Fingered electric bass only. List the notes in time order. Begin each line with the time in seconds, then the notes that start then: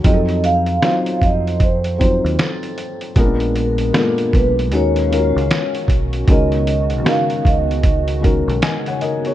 0.05 F2
1.22 F2
2.25 D#2
3.17 A#1
4.34 B1
4.73 D#2
5.36 C#2
5.89 B1
6.28 C#2
7.46 C#2
8.48 B1